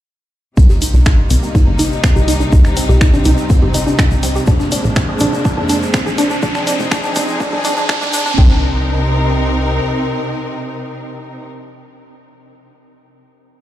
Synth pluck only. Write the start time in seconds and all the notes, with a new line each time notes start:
0.57 C4
0.70 G4
0.82 D#4
0.94 D4
1.06 D#4
1.30 C4
1.43 G4
1.55 D#4
1.67 D4
1.79 D#4
2.04 C4
2.16 G4
2.28 D#4
2.40 D4
2.52 D#4
2.77 C4
2.89 G4
3.01 D#4
3.13 D4
3.26 D#4
3.50 C4
3.62 G4
3.74 D#4
3.87 D4
3.99 D#4
4.23 C4
4.36 G4
4.48 D4
4.60 D4
4.72 D4
4.96 C4
5.09 G#4
5.21 D4
5.33 D4
5.45 D4
5.57 D4
5.69 D4
5.94 C4
6.06 G#4
6.18 D4
6.30 D4
6.43 D4
6.55 D4
6.67 D4
6.92 D4
7.04 D4
7.16 D4
7.40 D4
7.53 D4
7.65 D4
7.77 D4
7.89 D4
8.01 D4
8.13 D4
8.26 D4
8.38 C4